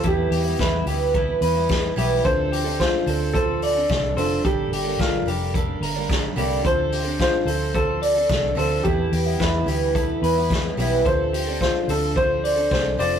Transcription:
<<
  \new Staff \with { instrumentName = "Upright piano" } { \time 4/4 \key d \minor \tempo 4 = 109 g'4 b'2~ b'8 r8 | c''4 c''4 a'4. a'8 | g'4 bes'2~ bes'8 r8 | c''4 c''4 a'4. a'8 |
g'4 b'2~ b'8 r8 | c''4 c''8 a'8 c''4 c''8 d''8 | }
  \new Staff \with { instrumentName = "Clean electric guitar" } { \time 4/4 \key d \minor a'8 g'8 e'8 g'8 a'8 b'4 g'8 | a'8 g'8 f'8 a'8 c''8 d''4 c''8 | a'8 g'8 f'8 g'8 a'8 bes'4 g'8 | a'8 g'8 f'8 a'8 c''8 d''4 c''8 |
a'8 g'8 e'8 g'8 a'8 b'4 g'8 | a'8 g'8 f'8 a'8 c''8 d''4 c''8 | }
  \new Staff \with { instrumentName = "Twelve-string acoustic guitar" } { \time 4/4 \key d \minor <e g b e'>8. <g b e'>8. <e g b e'>8 <e g b e'>8. <g b e'>8. <e g b e'>8 | <f c' d' a'>8. <c' d' a'>8. <f c' d' a'>8 <f c' d' a'>8. <c' d' a'>8. <d f c' d' a'>8 | <g bes d' a'>8. <g bes d' a'>8. <g bes d' a'>8 <g bes d'>8. <g bes d'>8. <g, d g bes d' a'>8 | <f c' d' a'>8. <c' d' a'>8. <f c' d' a'>8 <f c' d' a'>8. <c' d' a'>8. <d f c' d' a'>8 |
<e g b e'>8. <g b e'>8. <e g b e'>8 <e g b e'>8. <g b e'>8. <e g b e'>8 | <f c' d' a'>8. <c' d' a'>8. <f c' d' a'>8 <f c' d' a'>8. <c' d' a'>8. <d f c' d' a'>8 | }
  \new Staff \with { instrumentName = "Fingered electric bass" } { \clef bass \time 4/4 \key d \minor e,8 e,8 e,8 d,4 e,4 b,,8 | d,4~ d,16 r16 d,4. c,8 f,,8 | g,,8 g,,8 g,,8 f,,4 g,,4 c,8 | d,4~ d,16 r16 d,4. c,8 d,8 |
e,8 e,8 e,8 d,4 e,4 b,,8 | d,4~ d,16 r16 d,4. c,8 f,,8 | }
  \new DrumStaff \with { instrumentName = "Drums" } \drummode { \time 4/4 <hh bd>8 hho8 <hh bd sn>8 hho8 <hh bd>8 hho8 <hh bd sn>8 hho8 | <hh bd>8 hho8 <hh bd sn>8 hho8 <hh bd>8 hho8 <hh bd sn>8 hho8 | <hh bd>8 hho8 <hh bd sn>8 hho8 <hh bd>8 hho8 <hh bd sn>8 hho8 | <hh bd>8 hho8 <hh bd sn>8 hho8 <hh bd>8 hho8 <hh bd sn>8 hho8 |
<hh bd>8 hho8 <hh bd sn>8 hho8 <hh bd>8 hho8 <hh bd sn>8 hho8 | <hh bd>8 hho8 <hh bd sn>8 hho8 <hh bd>8 hho8 <hh bd sn>8 hho8 | }
>>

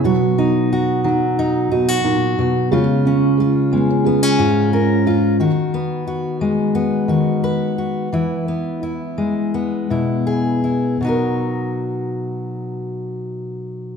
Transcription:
<<
  \new Staff \with { instrumentName = "Steel-string acoustic guitar" } { \time 4/4 \key b \major \tempo 4 = 88 << { fis'8 dis'8 fis'4 dis'8 dis'16 fis'4~ fis'16 | eis'8 cis'8 eis'4 b16 cis'16 eis'8 ais'8 eis'8 | fis'8 b8 fis'4 b8 fis'8 b'8 fis'8 | e'8 b8 e'4 b8 e'8 gis'8 e'8 |
<fis dis' fis' ais'>1 | } \\ { b,4. fis4 b,8 ais,8 b,8 | cis4. gis4 gis,4. | dis4. gis4 dis4. | e4. gis4 b,4. |
b,1 | } >> }
  \new Staff \with { instrumentName = "Felt piano" } { \time 4/4 \key b \major fis8 dis'4 dis'4 fis'8 dis'8 fis'8 | gis8 cis'8 gis8 b16 cis'16 gis8 eis'8 cis'8 eis'8 | r1 | r1 |
r1 | }
>>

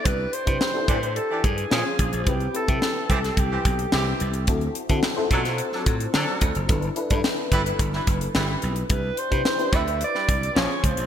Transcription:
<<
  \new Staff \with { instrumentName = "Alto saxophone" } { \time 4/4 \key c \lydian \tempo 4 = 108 b'8 c''4. a'8 gis'4. | g'8 a'4. g'4. r8 | r1 | r1 |
b'8 c''4 e''8 d''4 des''8 c''8 | }
  \new Staff \with { instrumentName = "FM electric piano" } { \time 4/4 \key c \lydian <d' e' g' b'>8 r16 <d' e' g' b'>8 <d' e' g' a'>4. r16 <des' f' aes' b' c''>8. r16 | <c' e' g' b'>8 <c' e' g' b'>16 <c' e' g' a'>4. r4. r16 | <c' e' fis' a'>8 r16 <c' e' fis' a'>8 <e' f' fis' a' c''>4. r4 r16 | <d' e' a' b'>8 <d' e' a' b'>16 <d' e' a' b'>4. r4. r16 |
<d' e' g' b'>8 r16 <d' e' g' b'>8 <d' e' g' b'>4. r16 <des' f' aes' c''>8. r16 | }
  \new Staff \with { instrumentName = "Horn section" } { \time 4/4 \key c \lydian r4. <e d' g'>16 r8 <e d' g'>16 r8 <f des' aes'>8. r16 | r4. <e c' g'>16 r8 <e c' g'>16 r8 <e c' g'>8. r16 | r4. <fis d' a'>16 r8 <fis d' a'>16 r8 <fis d' a'>8. r16 | r4. <g e' b'>16 r8 <g e' b'>16 r8 <g e' b'>8. r16 |
r4. <g e' b'>16 r8 <g e' b'>16 r8 <f des' aes'>8. r16 | }
  \new Staff \with { instrumentName = "Slap bass" } { \clef bass \time 4/4 \key c \lydian c,8 r16 c16 r8 a,8. r16 g,8 bes,16 r16 bes,,16 bes,,16 | c,8 r16 c16 r8 c,8 c,8 b,,8 c,8 c,8 | d,8 r16 d16 r8 b,8. r16 a,8 d16 r16 d,16 fis,,16 | g,,8 r16 g,16 r8 g,,8 g,,8 fis,,8 g,,8 b,,8 |
c,8 r16 c16 r8 d,8. r16 c,8 bes,,16 r16 des,16 bes,,16 | }
  \new DrumStaff \with { instrumentName = "Drums" } \drummode { \time 4/4 <hh bd>8 hh16 <hh bd>16 sn8 <hh bd>16 hh16 hh8 <hh bd>16 hh16 sn8 <hh bd>16 hh16 | <hh bd>16 hh16 hh16 <hh bd>16 sn8 <hh bd>16 <hh sn>16 <hh bd>8 <hh bd>16 hh16 sn8 hh16 hh16 | <hh bd>16 hh16 hh16 <hh bd>16 sn8 <hh bd>16 <hh sn>16 hh16 sn16 <hh bd>16 hh16 sn8 <hh bd>16 hh16 | <hh bd>16 hh16 hh16 <hh bd>16 sn8 <hh bd>16 hh16 <hh bd>16 sn16 <hh bd>16 hh16 sn8 hh16 hh16 |
<hh bd>8 hh16 <hh bd>16 sn16 hh16 <hh bd>16 hh16 hh16 sn16 <hh bd>16 hh16 sn8 <hh bd>16 hh16 | }
>>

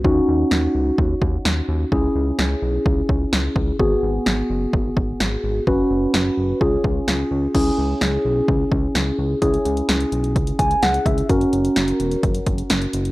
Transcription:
<<
  \new Staff \with { instrumentName = "Tine electric piano" } { \time 4/4 \key cis \dorian \tempo 4 = 128 << { r1 | r1 | r1 | r1 |
r1 | r2 r8 gis''8 fis''8 e''8 | r1 | } \\ { <cis' dis' fis'>1 | <cis' e' gis'>1 | <b fis' gis'>1 | <cis' fis' b'>2 <cis' eis' gis'>2 |
<cis' e' gis'>1 | <cis' e' gis'>1 | <cis' fis' ais'>1 | } >> }
  \new Staff \with { instrumentName = "Analog synth bass" } { \clef bass \time 4/4 \key cis \dorian dis,8 dis,8 dis,8 cis,8 dis,8 dis,8 dis,8 dis,8 | cis,8 cis,8 cis,8 b,,8 cis,8 cis,8 cis,8 cis,8 | gis,,8 gis,,8 gis,,8 fis,,8 gis,,8 gis,,8 gis,,8 gis,,8 | fis,,8 fis,,8 fis,,8 fis,,8 cis,8 cis,8 cis,8 cis,8 |
cis,8 cis,8 cis,8 b,,8 cis,8 cis,8 cis,8 cis,8 | cis,8 cis,8 cis,8 b,,8 cis,8 cis,8 cis,8 cis,8 | fis,,8 fis,,8 fis,,8 e,,8 fis,,8 fis,,8 fis,,8 fis,,8 | }
  \new DrumStaff \with { instrumentName = "Drums" } \drummode { \time 4/4 bd4 sn4 bd8 bd8 sn4 | bd4 sn4 bd8 bd8 sn8 bd8 | bd4 sn4 bd8 bd8 sn4 | bd4 sn4 bd8 bd8 sn4 |
<cymc bd>4 sn4 bd8 bd8 sn4 | <hh bd>16 hh16 hh16 hh16 <hh sn>16 hh16 hh16 hh16 <hh bd>16 hh16 <hh bd>16 hh16 <hh sn>16 hh16 <hh bd>16 hh16 | <hh bd>16 hh16 hh16 hh16 <hh sn>16 hh16 hh16 hh16 <hh bd>16 hh16 <hh bd>16 hh16 <hh sn>16 hh16 hh16 hh16 | }
>>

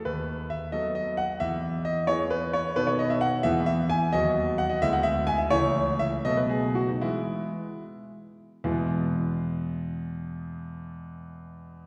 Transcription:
<<
  \new Staff \with { instrumentName = "Grand piano" } { \time 6/8 \key e \major \tempo 4. = 85 b'4 e''8 dis''8 dis''8 fis''8 | e''4 dis''8 cis''8 b'8 cis''8 | b'16 cis''16 dis''16 e''16 fis''8 e''8 e''8 gis''8 | dis''4 fis''16 dis''16 e''16 fis''16 e''8 gis''16 e''16 |
cis''4 e''8 dis''16 b'16 gis'8 fis'16 dis'16 | e'4. r4. | <e, b, gis b e' gis'>2.~ | <e, b, gis b e' gis'>2. | }
  \new Staff \with { instrumentName = "Grand piano" } { \clef bass \time 6/8 \key e \major dis,4. <fis b a'>4. | e,4. <e b gis'>4. | <b, dis b a'>4. <e, e b gis'>4. | <dis, fis b fis'>4. <d, gis b e'>4. |
<cis, e a e'>4. <b, fis a b>4. | <e gis b>4. r4. | r2. | r2. | }
>>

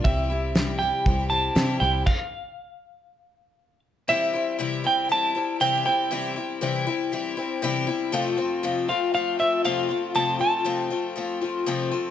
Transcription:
<<
  \new Staff \with { instrumentName = "Clean electric guitar" } { \time 4/4 \key c \major \tempo 4 = 119 e''4. g''4 a''4 g''8 | f''2.~ f''8 r8 | e''4 r8 g''8 a''4 g''8 g''8~ | g''4. r2 r8 |
r4. f''8 f''8 e''8 f''4 | a''8 a''2 r4. | }
  \new Staff \with { instrumentName = "Steel-string acoustic guitar" } { \time 4/4 \key c \major << { g'8 e'4 g'4 c''4 g'8 | r1 | r1 | r1 |
r1 | r1 | } \\ { c4 g4 g4 g4 | r1 | r1 | r1 |
r1 | r1 | } >> }
  \new Staff \with { instrumentName = "Twelve-string acoustic guitar" } { \time 4/4 \key c \major <c e g c' e'>8 <g c' e'>8 <c e g c' e'>8 <g c' e'>8 <e g c' e'>8 <g c' e'>8 <c e g c' e'>8 <g c' e'>8 | r1 | <c e g c' e'>8 <g c' e'>8 <c e g c' e'>8 <g c' e'>8 <e g c' e'>8 <g c' e'>8 <c e g c' e'>8 <g c' e'>8 | <c e g c' e'>8 <g c' e'>8 <c e g c' e'>8 <g c' e'>8 <e g c' e'>8 <g c' e'>8 <c e g c' e'>8 <g c' e'>8 |
<f, c f a c' f'>8 <f a c' f'>8 <f, c f a c' f'>8 <f a c' f'>8 <f a c' f'>8 <f a c' f'>8 <f, c f a c' f'>8 <f a c' f'>8 | <f, c f a c' f'>8 <f a c' f'>8 <f, c f a c' f'>8 <f a c' f'>8 <f a c' f'>8 <f a c' f'>8 <f, c f a c' f'>8 <f a c' f'>8 | }
  \new Staff \with { instrumentName = "Fingered electric bass" } { \clef bass \time 4/4 \key c \major c,2 c,4 c8 c,8 | r1 | r1 | r1 |
r1 | r1 | }
  \new DrumStaff \with { instrumentName = "Drums" } \drummode { \time 4/4 bd4 sn4 bd4 sn4 | <cymc bd>4 r4 r4 r4 | r4 r4 r4 r4 | r4 r4 r4 r4 |
r4 r4 r4 r4 | r4 r4 r4 r4 | }
>>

